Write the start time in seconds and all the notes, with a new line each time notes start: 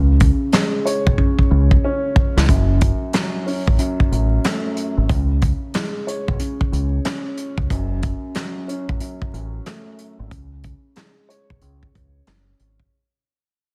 Already playing: C#2 C#3
0.20 C#3, kick, closed hi-hat
0.52 G#3, snare, closed hi-hat
0.85 C#5, closed hi-hat
1.07 B1, kick
1.18 C#3, kick
1.39 muted fingered electric bass stroke, kick
1.50 C#2 C#3
1.71 kick
1.84 C#4
2.16 kick
2.37 C#2, snare
2.49 F#1 F#2, kick, closed hi-hat
2.81 F#2, kick, closed hi-hat
3.13 F#3, snare, closed hi-hat
3.47 C#4, open hi-hat
3.68 A1, kick
3.79 F#2, closed hi-hat
4.00 kick
4.12 A1 F#2, closed hi-hat
4.44 A3, snare, closed hi-hat
4.77 closed hi-hat
4.97 G#1
5.09 C#2 C#3, kick, closed hi-hat
5.41 C#3, kick, closed hi-hat
5.74 G#3, snare, closed hi-hat
6.07 C#5, closed hi-hat
6.28 B1, kick
6.39 C#3, closed hi-hat
6.61 muted fingered electric bass stroke, kick
6.71 C#2 C#3, closed hi-hat
7.05 C#4, snare, closed hi-hat
7.37 closed hi-hat
7.58 C#2, kick
7.70 F#1 F#2, kick, closed hi-hat
8.02 F#2, kick, closed hi-hat
8.34 F#3, snare, closed hi-hat
8.68 C#4, closed hi-hat
8.89 A1, kick
9.00 F#2, closed hi-hat
9.22 kick
9.34 A1 F#2, closed hi-hat
9.66 A3, snare, closed hi-hat
9.98 closed hi-hat
10.19 G#1
10.31 C#2 C#3, kick, closed hi-hat
10.63 C#3, kick, closed hi-hat
10.96 G#3, snare, closed hi-hat
11.29 C#5, closed hi-hat
11.50 B1, kick
11.61 C#2 C#3, closed hi-hat
11.83 kick
11.93 C#2 C#3, kick, closed hi-hat
12.27 F#1 C#4, snare, closed hi-hat
12.59 G#1, closed hi-hat
12.80 kick